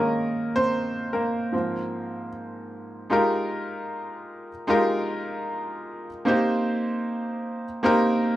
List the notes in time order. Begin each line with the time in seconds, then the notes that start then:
Already playing: D#3 G#3 A#3 C#4 D#4 A#4 D#5
0.56 C4 C5
1.13 A#3 A#4
1.52 G#2 F3 C4
3.10 G#3 D#4 F4 G4 A#4
4.67 G#3 D#4 F4 G4 A#4
6.25 A#3 C4 D#4 G4 C5
7.83 A#3 C4 D#4 G4 A#4